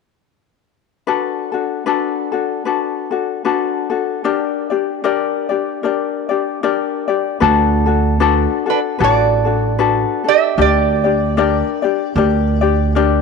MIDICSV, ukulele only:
0, 0, Header, 1, 2, 480
1, 0, Start_track
1, 0, Key_signature, 2, "major"
1, 0, Tempo, 791557
1, 650, Time_signature, 4, 2, 24, 8
1, 8015, End_track
2, 0, Start_track
2, 0, Title_t, "Ukulele"
2, 0, Program_c, 0, 24
2, 649, Note_on_c, 0, 71, 70
2, 650, Note_on_c, 0, 62, 68
2, 655, Note_on_c, 0, 66, 67
2, 656, Note_on_c, 0, 69, 72
2, 914, Note_off_c, 0, 69, 0
2, 918, Note_off_c, 0, 71, 0
2, 921, Note_on_c, 0, 69, 44
2, 924, Note_off_c, 0, 66, 0
2, 928, Note_off_c, 0, 62, 0
2, 931, Note_on_c, 0, 66, 40
2, 935, Note_on_c, 0, 62, 36
2, 1123, Note_off_c, 0, 62, 0
2, 1125, Note_off_c, 0, 69, 0
2, 1126, Note_off_c, 0, 66, 0
2, 1127, Note_on_c, 0, 71, 70
2, 1130, Note_on_c, 0, 62, 74
2, 1134, Note_on_c, 0, 66, 66
2, 1137, Note_on_c, 0, 69, 75
2, 1399, Note_off_c, 0, 69, 0
2, 1404, Note_off_c, 0, 71, 0
2, 1405, Note_off_c, 0, 66, 0
2, 1406, Note_on_c, 0, 69, 47
2, 1409, Note_off_c, 0, 62, 0
2, 1412, Note_on_c, 0, 66, 40
2, 1419, Note_on_c, 0, 62, 34
2, 1606, Note_off_c, 0, 62, 0
2, 1606, Note_off_c, 0, 69, 0
2, 1608, Note_off_c, 0, 66, 0
2, 1608, Note_on_c, 0, 71, 50
2, 1614, Note_on_c, 0, 62, 49
2, 1615, Note_on_c, 0, 66, 58
2, 1620, Note_on_c, 0, 69, 53
2, 1877, Note_off_c, 0, 69, 0
2, 1882, Note_off_c, 0, 71, 0
2, 1884, Note_off_c, 0, 66, 0
2, 1884, Note_on_c, 0, 69, 44
2, 1886, Note_off_c, 0, 62, 0
2, 1891, Note_on_c, 0, 66, 45
2, 1893, Note_on_c, 0, 62, 37
2, 2085, Note_off_c, 0, 62, 0
2, 2087, Note_off_c, 0, 66, 0
2, 2087, Note_off_c, 0, 69, 0
2, 2089, Note_on_c, 0, 71, 60
2, 2093, Note_on_c, 0, 62, 69
2, 2095, Note_on_c, 0, 66, 70
2, 2098, Note_on_c, 0, 69, 67
2, 2356, Note_off_c, 0, 69, 0
2, 2361, Note_off_c, 0, 71, 0
2, 2364, Note_off_c, 0, 66, 0
2, 2364, Note_on_c, 0, 69, 49
2, 2368, Note_off_c, 0, 62, 0
2, 2371, Note_on_c, 0, 66, 40
2, 2375, Note_on_c, 0, 62, 37
2, 2568, Note_off_c, 0, 62, 0
2, 2570, Note_off_c, 0, 66, 0
2, 2571, Note_off_c, 0, 69, 0
2, 2572, Note_on_c, 0, 70, 63
2, 2575, Note_on_c, 0, 62, 73
2, 2577, Note_on_c, 0, 67, 74
2, 2578, Note_on_c, 0, 74, 75
2, 2843, Note_off_c, 0, 74, 0
2, 2850, Note_off_c, 0, 67, 0
2, 2850, Note_on_c, 0, 74, 43
2, 2852, Note_off_c, 0, 70, 0
2, 2853, Note_off_c, 0, 62, 0
2, 2857, Note_on_c, 0, 67, 48
2, 2862, Note_on_c, 0, 62, 39
2, 3049, Note_off_c, 0, 62, 0
2, 3051, Note_off_c, 0, 67, 0
2, 3055, Note_off_c, 0, 74, 0
2, 3055, Note_on_c, 0, 70, 78
2, 3057, Note_on_c, 0, 62, 73
2, 3058, Note_on_c, 0, 67, 74
2, 3063, Note_on_c, 0, 74, 83
2, 3322, Note_off_c, 0, 74, 0
2, 3329, Note_on_c, 0, 74, 47
2, 3330, Note_off_c, 0, 67, 0
2, 3334, Note_off_c, 0, 70, 0
2, 3335, Note_off_c, 0, 62, 0
2, 3338, Note_on_c, 0, 67, 43
2, 3344, Note_on_c, 0, 62, 35
2, 3533, Note_off_c, 0, 67, 0
2, 3534, Note_off_c, 0, 62, 0
2, 3535, Note_off_c, 0, 74, 0
2, 3536, Note_on_c, 0, 70, 59
2, 3541, Note_on_c, 0, 62, 55
2, 3547, Note_on_c, 0, 67, 58
2, 3549, Note_on_c, 0, 74, 60
2, 3807, Note_off_c, 0, 74, 0
2, 3814, Note_off_c, 0, 70, 0
2, 3814, Note_on_c, 0, 74, 51
2, 3816, Note_off_c, 0, 67, 0
2, 3817, Note_off_c, 0, 62, 0
2, 3823, Note_on_c, 0, 67, 43
2, 3828, Note_on_c, 0, 62, 41
2, 4014, Note_off_c, 0, 62, 0
2, 4017, Note_off_c, 0, 67, 0
2, 4017, Note_off_c, 0, 74, 0
2, 4021, Note_on_c, 0, 62, 72
2, 4021, Note_on_c, 0, 70, 69
2, 4024, Note_on_c, 0, 67, 64
2, 4026, Note_on_c, 0, 74, 72
2, 4284, Note_off_c, 0, 74, 0
2, 4292, Note_off_c, 0, 67, 0
2, 4292, Note_on_c, 0, 74, 49
2, 4296, Note_off_c, 0, 62, 0
2, 4296, Note_off_c, 0, 70, 0
2, 4299, Note_on_c, 0, 67, 40
2, 4303, Note_on_c, 0, 62, 39
2, 4486, Note_off_c, 0, 62, 0
2, 4486, Note_off_c, 0, 74, 0
2, 4489, Note_on_c, 0, 71, 73
2, 4493, Note_on_c, 0, 62, 84
2, 4494, Note_off_c, 0, 67, 0
2, 4497, Note_on_c, 0, 66, 79
2, 4499, Note_on_c, 0, 69, 86
2, 4759, Note_off_c, 0, 69, 0
2, 4763, Note_off_c, 0, 71, 0
2, 4764, Note_off_c, 0, 66, 0
2, 4766, Note_on_c, 0, 69, 50
2, 4772, Note_on_c, 0, 66, 51
2, 4773, Note_off_c, 0, 62, 0
2, 4780, Note_on_c, 0, 62, 39
2, 4966, Note_off_c, 0, 62, 0
2, 4969, Note_off_c, 0, 69, 0
2, 4971, Note_off_c, 0, 66, 0
2, 4972, Note_on_c, 0, 71, 73
2, 4974, Note_on_c, 0, 62, 90
2, 4978, Note_on_c, 0, 66, 84
2, 4981, Note_on_c, 0, 69, 88
2, 5244, Note_off_c, 0, 69, 0
2, 5248, Note_off_c, 0, 71, 0
2, 5249, Note_off_c, 0, 66, 0
2, 5251, Note_on_c, 0, 69, 44
2, 5253, Note_off_c, 0, 62, 0
2, 5256, Note_on_c, 0, 66, 41
2, 5263, Note_on_c, 0, 62, 39
2, 5446, Note_off_c, 0, 69, 0
2, 5449, Note_on_c, 0, 71, 54
2, 5450, Note_off_c, 0, 62, 0
2, 5453, Note_off_c, 0, 66, 0
2, 5457, Note_on_c, 0, 62, 56
2, 5460, Note_on_c, 0, 66, 57
2, 5464, Note_on_c, 0, 69, 66
2, 5722, Note_off_c, 0, 69, 0
2, 5727, Note_off_c, 0, 71, 0
2, 5729, Note_on_c, 0, 69, 45
2, 5730, Note_off_c, 0, 66, 0
2, 5735, Note_off_c, 0, 62, 0
2, 5737, Note_on_c, 0, 66, 42
2, 5741, Note_on_c, 0, 62, 40
2, 5928, Note_off_c, 0, 62, 0
2, 5932, Note_off_c, 0, 66, 0
2, 5932, Note_off_c, 0, 69, 0
2, 5934, Note_on_c, 0, 71, 67
2, 5935, Note_on_c, 0, 62, 70
2, 5939, Note_on_c, 0, 66, 78
2, 5943, Note_on_c, 0, 69, 78
2, 6203, Note_off_c, 0, 69, 0
2, 6211, Note_on_c, 0, 69, 45
2, 6213, Note_off_c, 0, 62, 0
2, 6213, Note_off_c, 0, 71, 0
2, 6215, Note_off_c, 0, 66, 0
2, 6220, Note_on_c, 0, 62, 38
2, 6409, Note_off_c, 0, 62, 0
2, 6412, Note_on_c, 0, 70, 69
2, 6415, Note_off_c, 0, 69, 0
2, 6416, Note_on_c, 0, 62, 72
2, 6419, Note_on_c, 0, 67, 73
2, 6421, Note_on_c, 0, 74, 70
2, 6687, Note_off_c, 0, 74, 0
2, 6691, Note_off_c, 0, 70, 0
2, 6693, Note_off_c, 0, 62, 0
2, 6693, Note_off_c, 0, 67, 0
2, 6694, Note_on_c, 0, 74, 46
2, 6700, Note_on_c, 0, 67, 44
2, 6706, Note_on_c, 0, 62, 37
2, 6890, Note_off_c, 0, 62, 0
2, 6892, Note_off_c, 0, 67, 0
2, 6895, Note_on_c, 0, 70, 75
2, 6896, Note_off_c, 0, 74, 0
2, 6897, Note_on_c, 0, 62, 75
2, 6900, Note_on_c, 0, 67, 80
2, 6903, Note_on_c, 0, 74, 84
2, 7161, Note_off_c, 0, 74, 0
2, 7168, Note_on_c, 0, 74, 53
2, 7171, Note_off_c, 0, 67, 0
2, 7172, Note_off_c, 0, 70, 0
2, 7173, Note_off_c, 0, 62, 0
2, 7178, Note_on_c, 0, 67, 49
2, 7183, Note_on_c, 0, 62, 41
2, 7369, Note_off_c, 0, 62, 0
2, 7371, Note_off_c, 0, 67, 0
2, 7372, Note_off_c, 0, 74, 0
2, 7374, Note_on_c, 0, 70, 58
2, 7376, Note_on_c, 0, 62, 66
2, 7384, Note_on_c, 0, 67, 67
2, 7386, Note_on_c, 0, 74, 72
2, 7640, Note_off_c, 0, 74, 0
2, 7647, Note_off_c, 0, 67, 0
2, 7647, Note_on_c, 0, 74, 57
2, 7651, Note_off_c, 0, 70, 0
2, 7652, Note_off_c, 0, 62, 0
2, 7654, Note_on_c, 0, 67, 56
2, 7661, Note_on_c, 0, 62, 47
2, 7851, Note_off_c, 0, 67, 0
2, 7851, Note_off_c, 0, 74, 0
2, 7852, Note_off_c, 0, 62, 0
2, 7854, Note_on_c, 0, 70, 70
2, 7859, Note_on_c, 0, 62, 86
2, 7861, Note_on_c, 0, 74, 91
2, 7862, Note_on_c, 0, 67, 78
2, 8015, Note_off_c, 0, 62, 0
2, 8015, Note_off_c, 0, 67, 0
2, 8015, Note_off_c, 0, 70, 0
2, 8015, Note_off_c, 0, 74, 0
2, 8015, End_track
0, 0, End_of_file